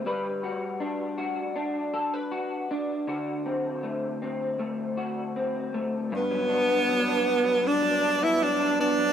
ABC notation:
X:1
M:4/4
L:1/16
Q:1/4=79
K:G
V:1 name="Tenor saxophone"
z16 | z16 | B,8 D3 E D2 D2 |]
V:2 name="Clean electric guitar"
[G,B]2 F2 D2 F2 D2 A B F2 D2 | [D,F]2 C2 A,2 C2 A,2 F2 C2 A,2 | G,, F, D B, F, D B, F, G,, F, D B, F, D B, F, |]